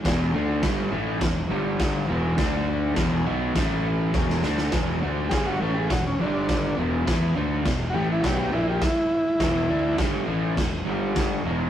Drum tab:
CC |x---x---x---x---|x---x---x-------|x---x---x---x---|x---x---x---x---|
SD |o---o---o---o---|o---o---o---oooo|o---o---o---o---|o---o---o---o---|
BD |o---o---o---o---|o---o---o---o---|o---o---o---o---|o---o---o---o---|

CC |x---x---x---x---|
SD |o---o---o---o---|
BD |o---o---o---o---|